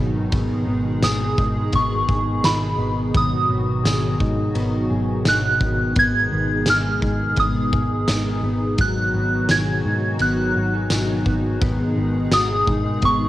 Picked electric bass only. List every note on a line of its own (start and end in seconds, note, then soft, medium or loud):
0.00 0.28 G#1 loud
0.33 0.63 G#1 loud
0.67 0.98 G#1 loud
1.02 1.34 G#1 loud
1.38 1.69 G#2 loud
1.73 2.04 G#1 loud
2.09 2.40 G#1 loud
2.44 2.75 G#1 medium
2.79 3.10 G#1 loud
3.15 3.46 G#1 loud
3.49 3.81 G#1 medium
3.84 4.16 G#1 loud
4.20 4.51 G#2 loud
4.55 4.86 G#1 medium
4.91 5.22 G#1 medium
5.26 5.57 G#1 medium
5.61 5.92 G#1 loud
5.96 6.27 G#1 loud
6.33 6.64 G#1 loud
6.68 6.99 G#1 loud
7.02 7.33 G#2 medium
7.37 7.69 G#1 loud
7.73 8.04 G#1 medium
8.09 8.40 G#1 loud
8.43 8.75 G#1 loud
8.79 9.10 G#1 loud
9.14 9.45 G#1 medium
9.50 9.81 G#1 loud
9.85 10.16 G#2 medium
10.20 10.51 G#1 medium
10.56 10.87 G#1 loud
10.91 11.22 G#1 medium
11.26 11.57 G#1 loud
11.62 11.93 G#1 loud
11.96 12.28 G#1 loud
12.31 12.63 G#1 loud
12.67 12.98 G#2 loud
13.03 13.29 G#1 loud